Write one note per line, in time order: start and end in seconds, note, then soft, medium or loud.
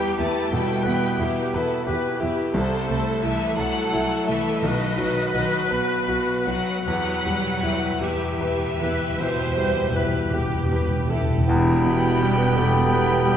0.00 0.49 E2 medium
0.00 0.18 G3 medium
0.00 0.86 B3 soft
0.00 0.17 E4 soft
0.00 0.19 E4 soft
0.00 0.39 G4 soft
0.00 0.51 G4 medium
0.00 0.17 B4 soft
0.00 1.54 B4 soft
0.00 0.17 G5 medium
0.18 0.27 E2 soft
0.18 0.51 A3 medium
0.18 0.51 E4 soft
0.18 0.72 E4 soft
0.18 0.51 B4 soft
0.18 0.52 A5 medium
0.51 0.60 E2 soft
0.51 1.06 B2 soft
0.51 1.51 G3 medium
0.51 0.84 E4 soft
0.51 0.85 A4 medium
0.51 0.83 B4 soft
0.51 1.53 G5 medium
0.85 0.94 E2 soft
0.85 1.40 B3 soft
0.85 1.17 E4 soft
0.85 1.18 B4 soft
0.85 1.19 B4 soft
1.19 1.27 E2 soft
1.19 1.52 E4 soft
1.19 1.74 E4 soft
1.19 1.53 G4 soft
1.19 1.52 B4 soft
1.53 1.62 E2 soft
1.53 1.86 E4 soft
1.53 1.87 A4 medium
1.53 1.85 B4 soft
1.53 2.07 B4 soft
1.86 1.95 E2 soft
1.86 2.18 E4 soft
1.86 2.40 G4 soft
1.86 2.19 B4 medium
1.86 2.17 B4 soft
2.19 2.29 E2 soft
2.19 2.52 E4 soft
2.19 2.54 E4 soft
2.19 2.54 G4 soft
2.19 2.52 B4 soft
2.53 4.59 C2 soft
2.53 2.63 C2 medium
2.53 3.18 C3 soft
2.53 2.86 E4 soft
2.53 2.86 A4 soft
2.53 3.56 A4 medium
2.53 3.19 C5 medium
2.87 2.97 C2 soft
2.87 3.43 A3 soft
2.87 3.20 E4 soft
2.87 3.20 A4 soft
3.21 3.32 C2 soft
3.21 3.57 E3 medium
3.21 3.56 E4 soft
3.21 3.79 E4 soft
3.21 3.56 A4 soft
3.21 3.58 E5 medium
3.57 3.66 C2 medium
3.57 4.28 F#3 medium
3.57 3.91 E4 soft
3.57 4.14 A4 soft
3.57 4.60 A4 medium
3.57 3.91 A4 soft
3.57 4.26 F#5 medium
3.92 4.02 C2 soft
3.92 4.26 E4 soft
3.92 4.49 E4 soft
3.92 4.26 A4 soft
4.27 4.36 C2 soft
4.27 4.63 E3 medium
4.27 4.62 A3 soft
4.27 4.62 E4 soft
4.27 4.62 A4 soft
4.27 4.62 E5 medium
4.61 4.71 B1 soft
4.61 6.82 B1 soft
4.61 5.65 B2 medium
4.61 5.32 D#3 medium
4.61 4.96 F#4 soft
4.61 4.96 B4 soft
4.61 6.84 B4 medium
4.61 5.31 D#5 medium
4.97 5.07 B1 soft
4.97 5.55 F#3 soft
4.97 5.31 F#4 soft
4.97 5.31 B4 soft
5.32 5.43 B1 soft
5.32 5.69 D#3 soft
5.32 5.69 F#4 soft
5.32 5.93 F#4 soft
5.32 5.69 B4 soft
5.32 5.68 D#5 medium
5.69 5.78 B1 soft
5.69 6.44 B2 soft
5.69 6.06 F#4 soft
5.69 6.46 B4 medium
5.69 6.06 B4 soft
5.69 6.31 B4 soft
6.07 6.16 B1 soft
6.07 6.44 F#4 soft
6.07 6.70 F#4 soft
6.07 6.44 B4 soft
6.45 6.55 B1 soft
6.45 6.83 F#3 soft
6.45 6.86 F#3 soft
6.45 6.84 F#4 soft
6.45 6.84 B4 soft
6.45 6.85 F#5 medium
6.85 6.93 E2 soft
6.85 6.94 E2 soft
6.85 9.15 E2 soft
6.85 7.98 F#3 medium
6.85 7.23 G4 soft
6.85 7.91 B4 soft
6.85 7.24 B4 soft
6.85 7.99 F#5 medium
6.94 7.01 E2 soft
7.02 7.09 E2 soft
7.11 7.17 E2 soft
7.19 7.25 E2 soft
7.24 7.33 E2 soft
7.24 7.86 G3 soft
7.24 7.60 G4 soft
7.24 7.61 B4 soft
7.34 7.42 E2 soft
7.43 7.49 E2 soft
7.51 7.58 E2 soft
7.59 7.66 E2 soft
7.59 7.71 E2 soft
7.59 7.99 G4 soft
7.59 7.98 B4 soft
7.63 7.74 E2 soft
7.63 8.24 E4 soft
7.76 7.82 E2 soft
7.83 7.90 E2 soft
7.91 7.98 E2 soft
7.99 8.06 E2 soft
7.99 8.08 E2 soft
7.99 10.31 E3 soft
7.99 8.74 G4 soft
7.99 8.36 G4 soft
7.99 8.63 G4 soft
7.99 8.36 B4 soft
7.99 10.32 E5 medium
8.08 8.14 E2 soft
8.15 8.22 E2 soft
8.23 8.31 E2 soft
8.32 8.39 E2 soft
8.37 8.47 E2 soft
8.37 8.77 G4 soft
8.37 8.77 B4 soft
8.37 9.03 B4 soft
8.49 8.56 E2 soft
8.57 8.64 E2 soft
8.65 8.73 E2 soft
8.74 8.82 E2 soft
8.74 9.17 G4 soft
8.74 9.18 B4 soft
8.74 9.17 B4 soft
8.79 8.87 E2 soft
8.79 8.90 E2 soft
8.79 9.41 E4 soft
8.91 8.99 E2 soft
9.00 9.08 E2 soft
9.09 9.16 E2 soft
9.16 9.24 E2 soft
9.16 9.26 E2 soft
9.16 9.80 B2 soft
9.16 9.55 G4 soft
9.16 9.55 B4 soft
9.16 9.93 C5 medium
9.25 9.32 E2 soft
9.33 9.39 E2 soft
9.41 9.47 E2 soft
9.49 9.56 E2 soft
9.56 9.64 E2 soft
9.56 10.17 G3 soft
9.56 9.93 G4 soft
9.56 9.93 B4 soft
9.65 9.72 E2 soft
9.73 9.80 E2 soft
9.81 9.88 E2 soft
9.89 9.97 E2 soft
9.89 10.01 E2 soft
9.89 10.31 B4 soft
9.94 10.05 E2 medium
9.94 10.55 E4 soft
9.94 10.31 G4 soft
9.94 10.31 B4 soft
10.06 10.13 E2 medium
10.14 10.21 E2 medium
10.23 10.30 E2 medium
10.30 10.38 E2 soft
10.30 10.38 E2 medium
10.30 11.08 G4 soft
10.30 10.69 G4 soft
10.30 10.69 B4 soft
10.34 10.94 G4 soft
10.39 10.45 E2 medium
10.47 10.53 E2 medium
10.54 10.62 E2 medium
10.63 10.70 E2 medium
10.69 10.77 E2 soft
10.69 10.79 E2 medium
10.69 11.08 G4 soft
10.69 11.08 B4 soft
10.69 11.34 B4 soft
10.80 10.86 E2 medium
10.87 10.95 E2 medium
10.96 11.03 E2 medium
11.04 11.12 E2 medium
11.04 11.47 A4 soft
11.09 11.17 E2 soft
11.09 11.48 E4 soft
11.09 11.46 G4 soft
11.09 11.47 B4 soft
11.13 11.19 E2 medium
11.21 11.28 E2 medium
11.30 11.36 E2 medium
11.38 11.45 E2 medium
11.47 12.43 E1 medium
11.47 12.43 E2 medium
11.47 13.37 E2 medium
11.47 13.37 B3 medium
11.47 12.22 E4 medium
11.47 13.37 G4 medium
11.47 13.37 G5 medium
11.47 13.37 B5 medium
11.83 12.42 B2 soft
11.83 12.88 B3 medium
11.83 12.88 G5 medium
11.83 12.88 B5 medium
12.21 12.78 G3 soft
12.21 12.40 G4 medium
12.38 12.57 B4 medium
12.56 13.37 E1 medium
12.56 13.37 E2 medium
12.56 13.12 G4 soft
12.56 13.25 A4 medium
12.89 13.37 B3 medium
12.89 13.37 B4 medium
12.89 13.37 G5 soft
12.89 13.37 B5 soft
13.24 13.37 G3 soft
13.24 13.37 G4 medium